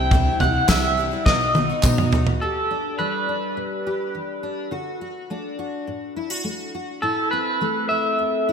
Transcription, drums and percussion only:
0.11 kick loud
0.11 floor tom loud
0.40 floor tom medium
0.69 kick loud
0.69 snare loud
0.69 clap loud
0.69 tambourine loud
1.26 kick loud
1.26 snare medium
1.55 high tom medium
1.83 kick loud
1.83 clap loud
1.83 mid tom medium
1.83 tambourine loud
1.98 mid tom medium
2.13 floor tom loud
2.27 floor tom loud

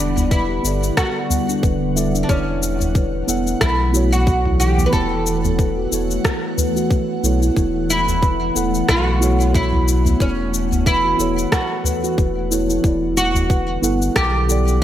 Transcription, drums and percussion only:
0.16 udu loud
0.16 cabasa soft
0.31 kick loud
0.31 cabasa soft
0.65 cabasa medium
0.83 cabasa soft
0.97 kick loud
0.97 cross-stick medium
0.97 cabasa soft
1.30 udu medium
1.30 cabasa medium
1.49 cabasa soft
1.63 kick loud
1.63 cabasa soft
1.97 cabasa medium
2.15 cabasa soft
2.29 kick loud
2.29 cabasa soft
2.63 cabasa medium
2.80 udu medium
2.80 cabasa soft
2.95 kick loud
2.95 cabasa soft
3.29 cabasa medium
3.47 cabasa soft
3.61 kick loud
3.61 cross-stick medium
3.61 cabasa soft
3.94 cabasa medium
4.13 cabasa soft
4.27 kick loud
4.27 cabasa soft
4.45 udu loud
4.60 cabasa medium
4.78 udu medium
4.78 cabasa soft
4.93 kick loud
4.93 cabasa soft
5.26 cabasa medium
5.44 udu medium
5.44 cabasa soft
5.59 kick loud
5.59 cabasa soft
5.92 cabasa medium
6.11 cabasa soft
6.25 kick loud
6.25 cross-stick medium
6.25 cabasa soft
6.58 udu medium
6.58 cabasa medium
6.77 cabasa soft
6.90 kick loud
6.90 cabasa soft
7.24 cabasa medium
7.43 cabasa soft
7.56 kick loud
7.56 cabasa soft
7.90 cabasa medium
8.07 udu medium
8.07 cabasa soft
8.22 kick loud
8.22 cabasa soft
8.56 cabasa medium
8.75 cabasa soft
8.88 kick loud
8.88 cross-stick medium
8.88 cabasa soft
9.22 cabasa medium
9.41 cabasa soft
9.54 kick loud
9.54 cabasa soft
9.73 udu medium
9.88 cabasa medium
10.06 udu medium
10.06 cabasa soft
10.20 kick loud
10.20 cabasa soft
10.54 cabasa medium
10.72 udu medium
10.72 cabasa soft
10.86 kick loud
10.86 cabasa soft
11.20 cabasa medium
11.38 cabasa soft
11.52 kick loud
11.52 cross-stick medium
11.52 cabasa soft
11.84 udu medium
11.84 cabasa medium
12.04 cabasa soft
12.18 kick loud
12.18 cabasa soft
12.52 cabasa medium
12.70 cabasa soft
12.84 kick loud
12.84 cabasa soft
13.17 cabasa medium
13.35 udu medium
13.35 cabasa soft
13.50 kick loud
13.50 cabasa soft
13.84 cabasa medium
14.02 cabasa soft
14.16 kick loud
14.16 cross-stick medium
14.16 cabasa soft
14.49 cabasa medium
14.68 cabasa soft

